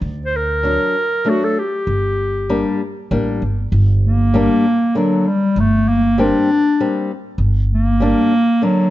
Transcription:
0.01 D2
0.25 C5
0.36 A#4
0.63 F#3 D4
1.25 F#3 A3 D4
1.29 F#4
1.44 A4
1.59 G4
1.87 G1
2.49 G3 A#3 D4
3.11 A1 G3 A#3 D4
3.42 G1
3.72 G1
4.05 A#3
4.34 G3 A#3 D4
4.95 D3 F#3 A#3 D4
5.28 G3
5.56 G1 A3
5.88 A#3
6.18 G3 A#3 C4 D4
6.80 G3 A#3 C4
7.38 G1
7.73 A#3
8.00 G3 A#3 D4
8.62 D3 F#3 A#3 D4

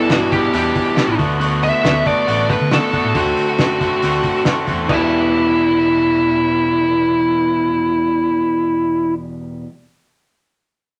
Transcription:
Already playing: G3 B3 D4 E4
0.10 E2 G2 B2 E3 G3 B3 D4 E4 F#4, snare, open hi-hat
0.32 E2 B2 E3 G3 B3 D4 E4 G4, kick, open hi-hat
0.53 E2 B2 E3 G3 B3 D4 E4, open hi-hat
0.75 kick, open hi-hat
0.97 E2 B2 E3 G3 B3 D4 E4, snare, open hi-hat
1.08 A1
1.17 D2 D3 A3 B3 D4 F#4, kick, open hi-hat
1.39 D3 A3 B3 D4 F#4, open hi-hat
1.63 E5, open hi-hat
1.83 D2 D3 A3 B3 D4 F#4, snare, open hi-hat
2.05 D3 A3 B3 D4 F#4 D5, kick, open hi-hat
2.27 A1 D3 A3 B3 D4 F#4, open hi-hat
2.50 B4, kick, open hi-hat
2.61 D3
2.71 D3 A3 B3 D4 F#4 A4, snare, open hi-hat
2.92 D3 A3 B3 D4 F#4, kick, open hi-hat
3.04 A2
3.15 D2 D3 A3 C4 F#4, kick, open hi-hat
3.37 open hi-hat
3.58 F#2 D3 A3 C4 F#4, snare, open hi-hat
3.80 D3 A3 C4 F#4, kick, open hi-hat
4.02 D2 D3 A3 C4 F#4, open hi-hat
4.23 kick, open hi-hat
4.45 F#2 D3 A3 C4 F#4, snare, open hi-hat
4.67 E2 D3 A3 C4 F#4, kick, open hi-hat
4.87 E1 E2 B2 E3 G3 D4 E4, kick, floor tom, crash
4.91 B3 E4

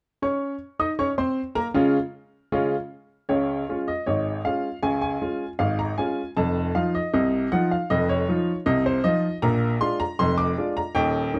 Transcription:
0.22 C#4 C#5 C#6
0.79 D#4 D#5 D#6
0.99 C#4 C#5 C#6
1.18 C4 C5 C6
1.55 A#3 A#4 A#5
1.74 C#3 G#3 C#4 F4
2.52 C#3 G#3 C#4 F4
3.29 C#2 C#3 C#5
3.69 G#3 C#4 F4
3.88 D#5
4.06 G#1 G#2 C#5
4.45 G#3 C#4 F4 F5
4.83 C#2 C#3 G#5
5.02 G#5
5.21 G#3 C#4 F4
5.59 G#1 G#2 F5
5.79 A#5
5.98 G#3 C#4 F4 G#5
6.37 F1 F2 A5
6.75 F3 D#4 F4 F5
6.95 D#5
7.13 C2 C3 D#5
7.52 F3 D#4 F4 F#5
7.71 F5
7.90 F1 F2 D#5
8.09 C#5
8.29 F3 D#4 F4
8.66 C2 C3 D#5
8.86 C5
9.04 F3 D#4 F4 D#5
9.42 A#1 A#2 A#5
9.81 G#3 D4 F4 C6
10.00 A#5
10.19 F1 F2 C6
10.38 D6
10.58 G#3 D4 F4
10.77 A#5
10.95 D#1 D#2 G5
11.34 A#3 C#4 D#4

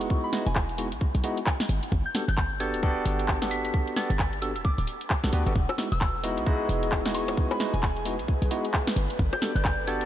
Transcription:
Already playing: G#3 B3 D#4 E4 F#4
0.01 closed hi-hat
0.10 kick
0.24 B5
0.33 G#3 B3 D#4 E4 F#4, snare, open hi-hat
0.46 E1 G#5, closed hi-hat
0.55 kick, clap
0.69 closed hi-hat
0.78 G#3 B3 D#4 E4 F#4, open hi-hat
0.92 B1, closed hi-hat
1.01 kick
1.15 B1, open hi-hat
1.24 G#3 B3 D#4 E4 F#4, open hi-hat
1.37 closed hi-hat
1.46 kick, clap
1.60 snare, closed hi-hat
1.69 G1, open hi-hat
1.83 closed hi-hat
1.92 G1, kick
2.06 G6
2.15 B3 D4 F#4 G4 A4 G6, snare, open hi-hat
2.28 G1 G6, closed hi-hat
2.37 kick, clap
2.60 B3 D4 F#4 G4 A4 A6, open hi-hat
2.74 D1, closed hi-hat
2.83 B3 D4 F#4 G4 A4, kick
3.06 G1, open hi-hat
3.19 closed hi-hat
3.28 kick, clap
3.42 B3 D4 F#4 G4 A4, snare, closed hi-hat
3.51 B6, open hi-hat
3.65 B6, closed hi-hat
3.74 kick
3.87 closed hi-hat
3.96 B3 D4 F#4 G4 A4 A6, snare, open hi-hat
4.10 G1, closed hi-hat
4.19 kick, clap
4.33 closed hi-hat
4.42 B3 D4 F#4 G4 A4 E6, open hi-hat
4.56 D1 E6, closed hi-hat
4.65 D6, kick
4.78 D1 D6, open hi-hat
4.87 open hi-hat
5.01 closed hi-hat
5.10 kick, clap
5.24 B1 B3 D4 F#4 G4 A4, snare, closed hi-hat
5.33 D2 B3 D4 F#4 G4 B4, open hi-hat
5.46 G1 B3 D4 F#4 G4 A4, closed hi-hat
5.56 E1 G#4 B4, kick
5.69 E6, high bongo
5.78 G#3 B3 D#4 E4 F#4 E6, snare, open hi-hat
5.92 E1 E6, closed hi-hat
6.01 kick, clap
6.24 G#3 B3 D#4 E4 F#4, open hi-hat
6.37 B1, closed hi-hat
6.46 G#3 B3 D#4 E4 F#4, kick
6.69 E1, open hi-hat
6.83 closed hi-hat
6.92 kick, clap
7.06 G#3 B3 D#4 E4 F#4, snare, closed hi-hat
7.15 C#6, open hi-hat
7.28 closed hi-hat, high bongo
7.37 kick
7.51 B5, high bongo
7.60 G#3 B3 D#4 E4 F#4, snare, open hi-hat
7.74 E1 G#5, closed hi-hat
7.83 kick, clap
7.96 closed hi-hat
8.05 G#3 B3 D#4 E4 F#4, open hi-hat
8.19 B1, closed hi-hat
8.28 kick
8.42 B1, open hi-hat
8.51 G#3 B3 D#4 E4 F#4, open hi-hat
8.65 closed hi-hat
8.74 kick, clap
8.87 snare, closed hi-hat
8.96 G1 A4 D5, open hi-hat
9.10 closed hi-hat
9.19 G1, kick
9.33 G6, high bongo
9.42 B3 D4 F#4 G4 A4, snare, open hi-hat
9.55 G1 G6, closed hi-hat
9.65 kick, clap
9.87 B3 D4 F#4 G4 A4 A6, open hi-hat
10.01 D1, closed hi-hat

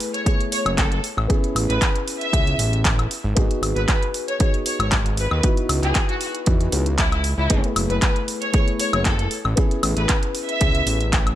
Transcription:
Already playing: A3 B3 E4 G#4
0.00 open hi-hat
0.14 C#5, closed hi-hat
0.25 A3 B3 E4 G#4 C#5, kick, closed hi-hat
0.40 closed hi-hat
0.52 C#5, open hi-hat
0.65 F#1 C#5, closed hi-hat, high woodblock
0.78 A4, kick, clap, closed hi-hat
0.92 A4, closed hi-hat
1.04 open hi-hat
1.17 A1, high woodblock
1.28 B3 C#4 E4 G#4, kick, closed hi-hat
1.44 closed hi-hat
1.55 A1, open hi-hat, high woodblock
1.69 A1 B4, closed hi-hat
1.82 kick, clap, closed hi-hat
1.96 closed hi-hat
2.08 open hi-hat
2.21 E5, closed hi-hat
2.32 C#2 B3 C#4 E4 G#4, kick, closed hi-hat
2.47 closed hi-hat
2.59 A1, open hi-hat
2.73 closed hi-hat
2.85 kick, clap, closed hi-hat
2.99 closed hi-hat, high woodblock
3.11 open hi-hat
3.24 G#1
3.35 G#1 B3 D#4 F#4 G#4, kick, closed hi-hat
3.51 closed hi-hat
3.62 G#1, open hi-hat, high woodblock
3.76 G#1 B4, closed hi-hat
3.88 B4, kick, clap, closed hi-hat
4.03 closed hi-hat
4.14 open hi-hat
4.28 C#5, closed hi-hat
4.39 B3 D#4 F#4 G#4 C#5, kick, closed hi-hat
4.54 closed hi-hat
4.66 C#5, open hi-hat
4.80 G#1 C#5, closed hi-hat, high woodblock
4.92 kick, clap, closed hi-hat
5.06 closed hi-hat
5.17 B4, open hi-hat
5.31 D#2 B4, high woodblock
5.42 B3 D#4 E4 F#4, kick, closed hi-hat
5.57 closed hi-hat
5.69 C#2, open hi-hat, high woodblock
5.83 C#2 G#4, clap, closed hi-hat
5.95 kick, clap, closed hi-hat
6.09 F#4, closed hi-hat
6.21 F#4, open hi-hat
6.35 closed hi-hat
6.46 E2 B3 D#4 E4 F#4, kick, closed hi-hat
6.61 closed hi-hat
6.72 C#2 B3 D#4 E4 F#4, open hi-hat
6.86 closed hi-hat
6.98 E4, kick, clap, closed hi-hat
7.12 E4, closed hi-hat, high woodblock
7.24 open hi-hat
7.38 C#2 E4
7.49 F#1 A3 B3 E4 G#4, kick, closed hi-hat
7.64 closed hi-hat
7.76 F#1, open hi-hat, high woodblock
7.89 F#1 B4, closed hi-hat
8.02 B4, kick, clap, closed hi-hat
8.16 closed hi-hat
8.28 open hi-hat
8.42 C#5, closed hi-hat
8.52 A3 B3 E4 G#4 C#5, kick, closed hi-hat
8.68 closed hi-hat
8.79 C#5, open hi-hat
8.93 F#1 C#5, closed hi-hat, high woodblock
9.05 A4, kick, clap, closed hi-hat
9.19 A4, closed hi-hat
9.31 open hi-hat
9.45 A1, high woodblock
9.56 B3 C#4 E4 G#4, kick, closed hi-hat
9.71 closed hi-hat
9.83 A1, open hi-hat, high woodblock
9.97 A1 B4, closed hi-hat
10.09 kick, clap, closed hi-hat
10.23 closed hi-hat
10.35 open hi-hat
10.49 E5, closed hi-hat
10.60 C#2 B3 C#4 E4 G#4, kick, closed hi-hat
10.75 closed hi-hat
10.86 A1, open hi-hat
11.01 closed hi-hat
11.13 kick, clap, closed hi-hat
11.27 closed hi-hat, high woodblock

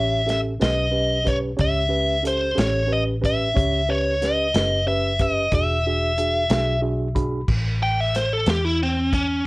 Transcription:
Already playing: A1 C#4 G4 C#5 E5
0.26 C#4 G4 A4 E5, snare, closed hi-hat
0.60 B1 C#4 G4 B4 D#5, snare, closed hi-hat
0.91 C#4 G4 B4
1.24 C#4 G4 B4 C#5, kick, closed hi-hat
1.57 C#2 C#4 G4 C#5, kick, closed hi-hat
1.61 E5
1.89 C#4 G4 B4
2.23 C#4 G4 A4, closed hi-hat
2.27 C5
2.55 A1 C#4 G4 A4 C#5, closed hi-hat
2.59 snare
2.87 C#4 G4 B4
2.92 D#5
3.21 C#4 G4 B4, kick, closed hi-hat
3.25 E5
3.54 C#2 C#4 G4 C#5, kick, closed hi-hat
3.88 C#4 G4 B4 C#5
4.21 C#4 G4 B4 D#5, snare, closed hi-hat
4.54 F#1 C#4 G4 B4, snare, closed hi-hat
4.86 C#4 G4 B4 E5
5.19 C#4 G4 B4 D#5, kick, closed hi-hat
5.52 E1 D4 F#4 G#4 E5, kick, closed hi-hat
5.86 D4 F#4 G#4
6.18 D4 F#4 G#4, closed hi-hat
6.50 B1 D4 F#4 G#4, snare, closed hi-hat
6.82 D4 F#4 G#4 E5
7.15 D4 F#4 G#4 B5, kick, closed hi-hat
7.48 A1, kick, crash
7.83 G5
8.00 E5
8.15 C5, snare, closed hi-hat
8.33 A4
8.46 E2 G4, snare, closed hi-hat
8.65 E4
8.83 C4
9.13 C#4, kick, closed hi-hat

